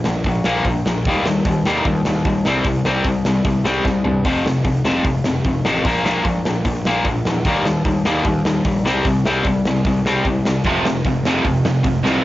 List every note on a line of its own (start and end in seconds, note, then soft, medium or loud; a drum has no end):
0.04 0.20 A#1 medium
0.04 0.23 A#2 medium
0.04 0.23 F3 medium
0.04 snare loud
0.24 0.39 A#1 medium
0.24 0.44 A#2 medium
0.24 0.44 F3 medium
0.24 kick medium
0.24 open hi-hat soft
0.44 0.59 A#1 medium
0.44 0.64 A#2 medium
0.44 0.64 F3 medium
0.44 0.64 A#3 medium
0.44 snare medium
0.64 0.79 A#1 medium
0.64 0.84 A#2 medium
0.64 0.84 F3 medium
0.64 kick loud
0.64 open hi-hat medium
0.86 1.00 A#1 medium
0.86 1.04 A#2 medium
0.86 1.04 F3 medium
0.86 snare loud
1.05 1.20 D#2 medium
1.05 1.25 D#3 medium
1.05 1.25 G3 medium
1.05 1.25 A#3 medium
1.05 kick loud
1.05 open hi-hat soft
1.26 1.40 D#2 medium
1.26 1.44 D#3 medium
1.26 1.44 G3 medium
1.26 snare loud
1.45 1.60 D#2 medium
1.45 1.64 D#3 medium
1.45 1.64 G3 medium
1.45 kick loud
1.45 open hi-hat medium
1.65 1.80 D#2 medium
1.65 1.84 D#3 medium
1.65 1.85 G3 medium
1.65 1.85 A#3 medium
1.65 snare loud
1.85 2.00 D#2 medium
1.85 2.04 D#3 medium
1.85 2.04 G3 medium
1.85 kick loud
1.85 open hi-hat soft
2.05 2.21 D#2 medium
2.05 2.24 D#3 medium
2.05 2.24 G3 medium
2.05 snare loud
2.25 2.40 D#2 medium
2.25 2.43 D#3 medium
2.25 2.44 G3 medium
2.25 kick loud
2.25 open hi-hat medium
2.45 2.60 C2 medium
2.45 2.64 C3 medium
2.45 2.65 G3 medium
2.45 2.65 C4 medium
2.45 snare loud
2.64 2.80 C2 medium
2.64 2.84 C3 medium
2.64 2.84 G3 medium
2.64 kick loud
2.64 open hi-hat medium
2.85 3.01 C2 medium
2.85 3.04 C3 medium
2.85 3.05 G3 medium
2.85 3.05 C4 loud
2.85 snare loud
3.04 3.20 C2 medium
3.04 3.23 C3 medium
3.04 3.24 G3 medium
3.04 kick loud
3.04 open hi-hat medium
3.25 3.40 C2 medium
3.25 3.44 C3 medium
3.25 3.44 G3 medium
3.25 snare loud
3.45 3.59 C2 medium
3.45 3.63 C3 medium
3.45 3.63 G3 medium
3.45 kick loud
3.45 open hi-hat medium
3.64 3.80 C2 medium
3.64 3.83 C3 medium
3.64 3.83 G3 medium
3.64 3.84 C4 medium
3.64 snare loud
3.84 3.99 C2 medium
3.84 4.03 C3 medium
3.84 4.03 G3 medium
3.84 kick loud
3.84 snare medium
4.04 4.26 G2 medium
4.04 4.23 C3 medium
4.04 4.23 G3 medium
4.04 floor tom medium
4.25 4.40 F1 medium
4.25 4.44 F2 medium
4.25 4.44 C3 medium
4.25 4.45 F3 loud
4.25 kick loud
4.25 open hi-hat medium
4.45 4.60 F1 medium
4.45 4.63 F2 medium
4.45 4.63 C3 medium
4.45 snare loud
4.64 4.79 F1 medium
4.64 4.83 F2 medium
4.64 4.83 C3 medium
4.64 kick medium
4.64 open hi-hat medium
4.85 5.00 F1 medium
4.85 5.03 F2 medium
4.85 5.04 C3 medium
4.85 5.04 F3 medium
4.85 snare loud
5.04 5.19 F1 medium
5.04 5.23 F2 medium
5.04 5.23 C3 medium
5.04 kick loud
5.04 open hi-hat medium
5.24 5.40 F1 medium
5.24 5.44 F2 medium
5.24 5.44 C3 medium
5.24 snare medium
5.44 5.60 F1 medium
5.44 5.63 F2 medium
5.44 5.64 C3 medium
5.44 kick loud
5.44 open hi-hat soft
5.65 5.80 A1 medium
5.65 5.84 F2 medium
5.65 5.84 C3 medium
5.65 5.84 F3 loud
5.65 snare loud
5.85 6.00 A#1 medium
5.85 6.04 A#2 medium
5.85 6.04 F3 medium
5.85 6.04 A#3 loud
5.85 kick loud
5.85 open hi-hat medium
6.04 6.19 A#1 medium
6.04 6.24 A#2 medium
6.04 6.24 F3 medium
6.04 6.24 A#3 loud
6.04 snare loud
6.24 6.39 A#1 medium
6.24 6.43 A#2 medium
6.24 6.43 F3 medium
6.24 kick loud
6.24 open hi-hat medium
6.44 6.59 A#1 medium
6.44 6.64 A#2 medium
6.44 6.64 F3 medium
6.44 snare loud
6.65 6.80 A#1 medium
6.65 6.83 A#2 medium
6.65 6.83 F3 medium
6.65 kick loud
6.65 open hi-hat medium
6.85 7.00 A#1 medium
6.85 7.05 A#2 medium
6.85 7.05 F3 medium
6.85 7.05 A#3 medium
6.85 snare loud
7.04 7.19 A#1 medium
7.04 7.24 A#2 medium
7.04 7.24 F3 medium
7.04 kick loud
7.04 open hi-hat soft
7.25 7.40 E2 medium
7.25 7.44 A#2 medium
7.25 7.44 F3 medium
7.25 snare loud
7.45 7.60 D#2 medium
7.45 7.64 D#3 medium
7.45 7.65 G3 medium
7.45 7.65 A#3 medium
7.45 kick loud
7.45 open hi-hat medium
7.65 7.80 D#2 medium
7.65 7.84 D#3 medium
7.65 7.84 G3 medium
7.65 snare loud
7.85 7.99 D#2 medium
7.85 8.03 D#3 medium
7.85 8.04 G3 medium
7.85 kick medium
7.85 open hi-hat medium
8.05 8.20 D#2 medium
8.05 8.24 D#3 medium
8.05 8.24 G3 loud
8.05 8.24 A#3 medium
8.05 snare loud
8.25 8.40 D#2 loud
8.25 8.43 D#3 medium
8.25 8.44 G3 medium
8.25 kick loud
8.25 open hi-hat soft
8.44 8.59 D#2 medium
8.44 8.64 D#3 medium
8.44 8.64 G3 medium
8.44 snare loud
8.64 8.85 A#1 medium
8.64 8.83 D#3 medium
8.64 8.83 G3 medium
8.64 kick loud
8.64 open hi-hat medium
8.85 8.99 C2 medium
8.85 9.04 C3 medium
8.85 9.04 G3 medium
8.85 9.05 C4 medium
8.85 snare medium
9.05 9.19 C2 medium
9.05 9.23 C3 medium
9.05 9.24 G3 medium
9.05 kick loud
9.05 open hi-hat medium
9.25 9.40 C2 medium
9.25 9.44 C3 medium
9.25 9.45 G3 medium
9.25 9.45 C4 medium
9.25 snare loud
9.44 9.59 C2 medium
9.44 9.64 C3 medium
9.44 9.64 G3 medium
9.44 kick loud
9.44 open hi-hat medium
9.64 9.79 C2 medium
9.64 9.84 C3 medium
9.64 9.84 G3 medium
9.64 snare loud
9.85 9.99 C2 medium
9.85 10.04 C3 medium
9.85 10.04 G3 medium
9.85 kick loud
9.85 open hi-hat medium
10.03 10.18 C2 medium
10.03 10.24 C3 medium
10.03 snare loud
10.07 10.25 G3 medium
10.07 10.25 C4 medium
10.25 10.39 C2 medium
10.25 10.43 C3 medium
10.25 10.44 G3 medium
10.25 kick loud
10.25 open hi-hat soft
10.44 10.59 C2 medium
10.44 10.64 C3 medium
10.44 10.64 G3 medium
10.44 snare loud
10.64 10.79 F1 medium
10.64 10.84 F2 medium
10.64 10.84 C3 medium
10.64 10.85 F3 loud
10.64 kick loud
10.64 open hi-hat medium
10.83 10.98 F1 medium
10.83 11.03 F2 medium
10.83 11.04 C3 medium
10.83 snare loud
11.05 11.19 F1 medium
11.05 11.23 F2 medium
11.05 11.23 C3 medium
11.05 kick loud
11.05 open hi-hat soft
11.24 11.38 F1 medium
11.24 11.44 F2 medium
11.24 11.44 C3 medium
11.24 11.45 F3 medium
11.24 snare loud
11.45 11.59 F1 medium
11.45 11.63 F2 medium
11.45 11.63 C3 medium
11.45 kick medium
11.45 open hi-hat soft
11.64 11.79 F1 medium
11.64 11.82 F2 medium
11.64 11.83 C3 medium
11.64 snare loud
11.83 11.99 F1 medium
11.83 12.02 F2 medium
11.83 12.02 C3 medium
11.83 kick loud
11.83 open hi-hat medium
12.03 12.18 C2 medium
12.03 12.23 F2 medium
12.03 12.23 C3 loud
12.03 12.24 F3 loud
12.03 snare loud